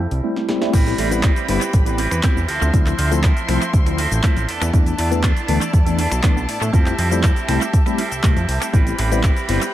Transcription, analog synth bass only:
0.11 0.21 C2 medium
0.73 0.93 A1 loud
0.98 1.32 A1 medium
1.48 1.59 G1 loud
1.74 2.07 A1 medium
2.11 2.21 E2 medium
2.37 2.46 E2 loud
2.61 2.71 D2 loud
2.73 2.93 D2 loud
2.98 3.32 D2 medium
3.48 3.59 C2 loud
3.73 4.07 D2 loud
4.11 4.21 A1 medium
4.36 4.46 A1 medium
4.48 4.59 E2 soft
4.61 4.71 E2 loud
4.98 5.32 E2 loud
5.48 5.59 D2 loud
5.73 6.07 E2 loud
6.12 6.21 B1 medium
6.36 6.46 B1 loud
6.61 6.71 A2 loud
6.73 6.93 F2 loud
6.98 7.32 F2 loud
7.49 7.59 C2 loud
8.11 8.21 C2 soft
8.24 8.34 C2 medium
8.36 8.46 F2 loud
8.48 8.59 C2 loud
8.73 8.93 A1 loud
8.99 9.32 A1 medium
9.49 9.59 G1 loud

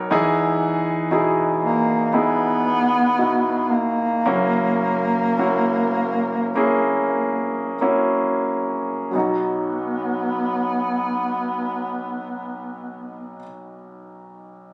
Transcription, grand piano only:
0.00 0.13 B1 medium
0.00 0.13 B2 medium
0.00 0.13 F#3 medium
0.00 0.11 B3 medium
0.00 0.11 D#4 medium
0.00 0.13 F#4 medium
0.00 0.13 A#4 medium
0.00 0.13 C#5 medium
0.11 4.22 E2 medium
0.11 4.22 E3 medium
0.11 1.06 B3 medium
0.11 1.06 D#4 medium
0.11 1.07 E4 medium
0.11 1.07 G#4 loud
1.11 2.08 B2 medium
1.11 2.08 D#4 medium
1.11 2.09 E4 medium
1.11 2.09 G#4 medium
2.13 3.13 B3 medium
2.13 3.13 D#4 medium
2.13 3.13 E4 medium
2.13 3.13 G#4 medium
3.18 4.21 B2 medium
3.18 4.21 D#4 soft
3.18 4.21 E4 medium
3.18 4.21 F#4 medium
4.26 9.11 F#1 medium
4.26 9.11 F#2 soft
4.26 5.33 A#3 medium
4.26 5.33 C#4 medium
4.26 5.33 E4 medium
4.26 5.33 F#4 medium
5.38 6.50 A#3 medium
5.38 6.50 C#4 medium
5.38 6.51 E4 medium
5.38 6.51 F#4 medium
6.55 7.74 A#3 medium
6.55 7.75 C#4 medium
6.55 7.75 E4 medium
6.55 7.75 G#4 medium
7.81 9.08 A#3 medium
7.81 9.08 C#4 medium
7.81 9.08 E4 medium
7.81 9.08 F#4 medium
9.11 13.38 B1 medium
9.11 13.35 F#3 medium
9.11 13.37 B3 soft
9.15 13.39 D#4 soft
9.15 13.42 F#4 medium

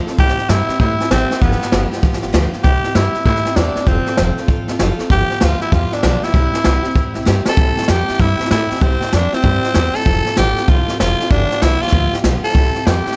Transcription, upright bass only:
0.07 muted upright bass stroke medium
0.19 0.31 C2 loud
0.38 muted upright bass stroke medium
0.49 0.61 G2 loud
0.69 muted upright bass stroke medium
0.80 0.92 A2 medium
1.00 muted upright bass stroke medium
1.11 1.23 A1 loud
1.42 1.54 G1 loud
1.72 1.85 G1 medium
1.92 muted upright bass stroke medium
2.03 2.15 B1 medium
2.23 2.30 G1 medium
2.34 2.46 D2 medium
2.54 muted upright bass stroke medium
2.65 2.77 C2 medium
2.84 muted upright bass stroke medium
2.95 3.07 G2 loud
3.15 muted upright bass stroke medium
3.26 3.38 A2 loud
3.45 muted upright bass stroke medium
3.56 3.69 E2 loud
3.76 muted upright bass stroke medium
3.87 3.99 F1 loud
4.19 4.31 F1 medium
4.48 4.61 A1 loud
4.69 4.76 F1 loud
4.80 4.92 F#1 loud
4.99 muted upright bass stroke medium
5.10 5.23 G1 loud
5.42 5.54 D2 medium
5.62 muted upright bass stroke medium
5.72 5.85 E2 medium
5.93 muted upright bass stroke medium
6.03 6.16 B1 medium
6.24 muted upright bass stroke medium
6.34 6.46 C2 loud
6.54 muted upright bass stroke medium
6.65 6.77 C2 medium
6.85 muted upright bass stroke medium
6.96 7.08 E2 loud
7.17 7.23 C2 loud
7.27 7.39 G2 loud
7.47 muted upright bass stroke medium
7.57 7.73 C2 medium
7.89 8.04 F2 medium
8.10 muted upright bass stroke medium
8.20 8.35 G2 medium
8.40 muted upright bass stroke medium
8.51 8.67 A2 loud
8.71 muted upright bass stroke medium
8.81 8.97 C2 medium
9.02 muted upright bass stroke medium
9.13 9.29 F2 medium
9.33 muted upright bass stroke medium
9.44 9.59 G2 loud
9.75 9.91 E2 loud
10.06 10.22 F1 medium
10.26 muted upright bass stroke medium
10.38 10.53 A1 loud
10.69 10.84 C2 medium
10.88 muted upright bass stroke medium
11.00 11.15 F1 medium
11.31 11.46 G1 loud
11.62 11.77 C2 medium
11.82 muted upright bass stroke medium
11.93 12.08 D2 medium
12.13 muted upright bass stroke medium
12.24 12.39 B1 medium
12.44 muted upright bass stroke medium
12.55 12.70 C2 medium
12.75 muted upright bass stroke medium
12.87 13.02 F2 loud
13.06 muted upright bass stroke medium

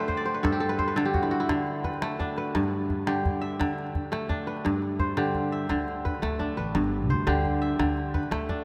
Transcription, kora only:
0.00 0.48 D3 medium
0.00 1.90 A3 medium
0.00 0.31 B4 medium
0.00 0.17 D5 medium
0.00 0.76 E5 medium
0.00 0.42 F#5 medium
0.00 0.31 G5 medium
0.08 0.25 C5 medium
0.17 1.28 D5 medium
0.25 0.75 C5 medium
0.34 0.69 B4 medium
0.43 1.54 G2 medium
0.43 0.60 A4 medium
0.52 1.05 G4 medium
0.60 0.96 A4 medium
0.69 0.87 B4 medium
0.79 1.90 C5 medium
0.88 1.84 B4 medium
0.96 1.48 D3 medium
0.96 2.28 A4 medium
1.05 1.37 G4 medium
1.14 1.31 F#4 medium
1.23 1.40 E4 medium
1.31 2.61 F#4 medium
1.40 2.97 E4 medium
1.49 2.59 D3 medium
1.84 2.37 B4 medium
2.02 4.02 A3 medium
2.20 3.87 D4 medium
2.38 3.61 B4 medium
2.55 3.64 G2 medium
3.07 3.58 D3 medium
3.07 4.48 G4 medium
3.41 4.45 E5 medium
3.60 4.69 D3 medium
4.12 6.12 A3 medium
4.29 5.97 D4 medium
4.47 5.05 B4 medium
4.65 5.74 G2 medium
4.99 6.11 C5 medium
5.17 5.69 D3 medium
5.17 6.58 G4 medium
5.52 6.56 E5 medium
5.70 6.79 D3 medium
6.05 6.57 B4 medium
6.22 8.22 A3 medium
6.39 8.07 D4 medium
6.57 7.16 B4 medium
6.75 7.84 G2 medium
7.10 8.20 C5 medium
7.27 7.78 D3 medium
7.27 8.64 G4 medium
7.62 8.64 E5 medium
7.79 8.64 D3 medium
8.14 8.64 B4 medium
8.31 8.64 A3 medium
8.49 8.64 D4 medium

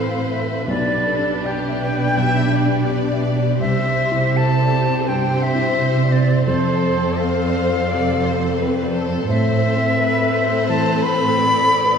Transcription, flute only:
0.00 0.33 F5 medium
0.31 0.68 E5 medium
0.69 1.47 D5 medium
1.46 3.24 G5 medium
3.61 4.38 E5 medium
4.37 5.10 A5 loud
5.08 5.44 G5 medium
5.43 6.14 E5 medium
6.12 6.46 D5 medium
6.46 7.22 C5 medium
7.20 8.94 F5 medium
9.29 10.66 E5 loud
10.69 11.04 A5 loud
11.03 11.98 B5 loud

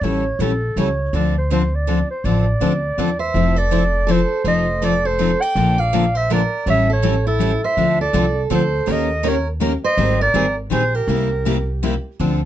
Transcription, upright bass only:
0.01 0.31 A1 medium
0.39 0.70 A#1 medium
0.76 1.07 C#2 medium
1.13 2.02 D2 medium
2.24 2.53 A1 medium
2.61 2.92 D2 medium
2.98 3.29 E2 medium
3.34 4.23 F1 medium
4.44 5.33 F1 medium
5.55 6.44 A#1 medium
6.66 7.55 A1 medium
7.77 8.06 D2 medium
8.13 8.45 C2 medium
8.50 8.82 D2 medium
8.87 9.76 D#2 medium
9.97 10.27 G#1 medium
10.34 10.65 G#1 medium
10.71 11.02 A#1 medium
11.07 11.96 C2 medium
12.20 12.45 D2 medium

